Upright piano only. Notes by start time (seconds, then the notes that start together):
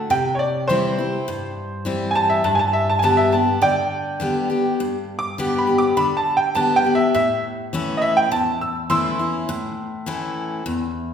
0.11 G5
0.35 C#5
0.39 D5
0.68 C5
2.11 G#5
2.15 A5
2.30 E5
2.45 A5
2.55 G#5
2.59 A5
2.73 E5
2.90 A5
2.99 G#5
3.04 A5
3.17 E5
3.33 A5
3.62 D5 G5
5.19 D6
5.58 B5
5.78 D6
5.97 B5
6.17 A5
6.37 G5
6.55 A5
6.76 G5
6.95 E5
7.15 E5
7.97 D#5
8.02 E5
8.17 G5
8.32 A5
8.61 E6
8.90 C6 E6